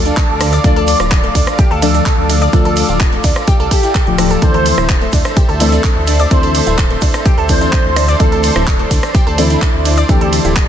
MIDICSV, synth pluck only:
0, 0, Header, 1, 2, 480
1, 0, Start_track
1, 0, Key_signature, -1, "minor"
1, 0, Tempo, 472441
1, 652, Time_signature, 4, 2, 24, 8
1, 10853, End_track
2, 0, Start_track
2, 0, Title_t, "Synth pluck"
2, 0, Program_c, 0, 84
2, 58, Note_on_c, 0, 62, 81
2, 109, Note_off_c, 0, 62, 0
2, 413, Note_on_c, 0, 62, 78
2, 468, Note_off_c, 0, 62, 0
2, 536, Note_on_c, 0, 74, 106
2, 567, Note_off_c, 0, 74, 0
2, 652, Note_on_c, 0, 62, 106
2, 708, Note_off_c, 0, 62, 0
2, 776, Note_on_c, 0, 69, 106
2, 828, Note_off_c, 0, 69, 0
2, 1016, Note_on_c, 0, 65, 73
2, 1047, Note_off_c, 0, 65, 0
2, 1256, Note_on_c, 0, 57, 82
2, 1334, Note_off_c, 0, 57, 0
2, 1373, Note_on_c, 0, 62, 80
2, 1428, Note_off_c, 0, 62, 0
2, 1612, Note_on_c, 0, 67, 102
2, 1668, Note_off_c, 0, 67, 0
2, 1736, Note_on_c, 0, 69, 102
2, 1788, Note_off_c, 0, 69, 0
2, 1852, Note_on_c, 0, 62, 76
2, 1908, Note_off_c, 0, 62, 0
2, 1976, Note_on_c, 0, 62, 79
2, 2028, Note_off_c, 0, 62, 0
2, 2333, Note_on_c, 0, 62, 79
2, 2388, Note_off_c, 0, 62, 0
2, 2455, Note_on_c, 0, 74, 111
2, 2487, Note_off_c, 0, 74, 0
2, 2573, Note_on_c, 0, 62, 106
2, 2628, Note_off_c, 0, 62, 0
2, 2695, Note_on_c, 0, 69, 107
2, 2748, Note_off_c, 0, 69, 0
2, 2936, Note_on_c, 0, 65, 73
2, 2967, Note_off_c, 0, 65, 0
2, 3176, Note_on_c, 0, 57, 77
2, 3254, Note_off_c, 0, 57, 0
2, 3292, Note_on_c, 0, 62, 79
2, 3348, Note_off_c, 0, 62, 0
2, 3532, Note_on_c, 0, 67, 106
2, 3587, Note_off_c, 0, 67, 0
2, 3655, Note_on_c, 0, 69, 105
2, 3708, Note_off_c, 0, 69, 0
2, 3772, Note_on_c, 0, 69, 75
2, 3827, Note_off_c, 0, 69, 0
2, 3895, Note_on_c, 0, 64, 84
2, 3927, Note_off_c, 0, 64, 0
2, 4252, Note_on_c, 0, 62, 81
2, 4308, Note_off_c, 0, 62, 0
2, 4375, Note_on_c, 0, 69, 107
2, 4454, Note_off_c, 0, 69, 0
2, 4493, Note_on_c, 0, 62, 106
2, 4548, Note_off_c, 0, 62, 0
2, 4616, Note_on_c, 0, 69, 103
2, 4668, Note_off_c, 0, 69, 0
2, 4856, Note_on_c, 0, 64, 73
2, 4887, Note_off_c, 0, 64, 0
2, 5096, Note_on_c, 0, 57, 79
2, 5174, Note_off_c, 0, 57, 0
2, 5212, Note_on_c, 0, 62, 80
2, 5267, Note_off_c, 0, 62, 0
2, 5452, Note_on_c, 0, 67, 102
2, 5508, Note_off_c, 0, 67, 0
2, 5575, Note_on_c, 0, 69, 104
2, 5628, Note_off_c, 0, 69, 0
2, 5692, Note_on_c, 0, 62, 80
2, 5747, Note_off_c, 0, 62, 0
2, 5814, Note_on_c, 0, 62, 81
2, 5867, Note_off_c, 0, 62, 0
2, 5930, Note_on_c, 0, 62, 82
2, 5987, Note_off_c, 0, 62, 0
2, 6171, Note_on_c, 0, 62, 80
2, 6227, Note_off_c, 0, 62, 0
2, 6295, Note_on_c, 0, 74, 108
2, 6327, Note_off_c, 0, 74, 0
2, 6413, Note_on_c, 0, 62, 100
2, 6468, Note_off_c, 0, 62, 0
2, 6534, Note_on_c, 0, 69, 107
2, 6587, Note_off_c, 0, 69, 0
2, 6774, Note_on_c, 0, 64, 71
2, 6806, Note_off_c, 0, 64, 0
2, 7015, Note_on_c, 0, 57, 79
2, 7094, Note_off_c, 0, 57, 0
2, 7131, Note_on_c, 0, 62, 80
2, 7187, Note_off_c, 0, 62, 0
2, 7370, Note_on_c, 0, 67, 106
2, 7426, Note_off_c, 0, 67, 0
2, 7493, Note_on_c, 0, 69, 104
2, 7547, Note_off_c, 0, 69, 0
2, 7611, Note_on_c, 0, 62, 80
2, 7667, Note_off_c, 0, 62, 0
2, 7733, Note_on_c, 0, 62, 80
2, 7787, Note_off_c, 0, 62, 0
2, 7850, Note_on_c, 0, 62, 81
2, 7907, Note_off_c, 0, 62, 0
2, 8090, Note_on_c, 0, 62, 82
2, 8146, Note_off_c, 0, 62, 0
2, 8213, Note_on_c, 0, 74, 110
2, 8246, Note_off_c, 0, 74, 0
2, 8329, Note_on_c, 0, 62, 104
2, 8386, Note_off_c, 0, 62, 0
2, 8453, Note_on_c, 0, 69, 103
2, 8507, Note_off_c, 0, 69, 0
2, 8694, Note_on_c, 0, 64, 77
2, 8726, Note_off_c, 0, 64, 0
2, 8934, Note_on_c, 0, 57, 76
2, 9014, Note_off_c, 0, 57, 0
2, 9051, Note_on_c, 0, 62, 78
2, 9107, Note_off_c, 0, 62, 0
2, 9292, Note_on_c, 0, 67, 109
2, 9347, Note_off_c, 0, 67, 0
2, 9415, Note_on_c, 0, 69, 103
2, 9468, Note_off_c, 0, 69, 0
2, 9530, Note_on_c, 0, 62, 80
2, 9587, Note_off_c, 0, 62, 0
2, 9654, Note_on_c, 0, 62, 79
2, 9707, Note_off_c, 0, 62, 0
2, 10011, Note_on_c, 0, 62, 79
2, 10067, Note_off_c, 0, 62, 0
2, 10135, Note_on_c, 0, 74, 107
2, 10167, Note_off_c, 0, 74, 0
2, 10251, Note_on_c, 0, 62, 104
2, 10307, Note_off_c, 0, 62, 0
2, 10374, Note_on_c, 0, 69, 104
2, 10427, Note_off_c, 0, 69, 0
2, 10614, Note_on_c, 0, 64, 78
2, 10646, Note_off_c, 0, 64, 0
2, 10853, End_track
0, 0, End_of_file